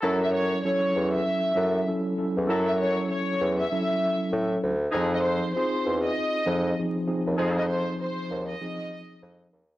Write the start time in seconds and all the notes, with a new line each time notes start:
0.01 F#2 F#3 C#4 E4 A4
0.23 E5
0.34 C#5
0.64 F#3 C#4 E4 A4 C#5
0.96 E2
1.14 E5
1.55 F#2 F#3 C#4 E4 A4
1.88 F#3 C#4 E4 A4
2.18 F#3 C#4 E4 A4
2.37 E2
2.47 F#2 F#3 C#4 E4 A4
2.66 E5
2.78 C#5
3.10 C#5
3.41 E2
3.59 E5
3.72 F#3 C#4 E4 A4
4.33 A2
4.63 D2
4.91 F2 F3 D#4 G#4
4.96 F3 C4 D#4 G#4
5.14 D#5
5.23 C5
5.54 C4 D#4 F4 G#4 C5
5.86 E2
6.04 D#5
6.46 F2 F3 C4 D#4 G#4
6.79 F3 C4 D#4 G#4
7.07 F3 C4 D#4 G#4
7.27 D#2
7.37 F2 F3 C4 D#4 G#4
7.58 D#5
7.68 C5
8.01 C5
8.30 D#2
8.49 D#5
8.61 F3 C4 D#4 G#4
9.22 F2
9.53 D#2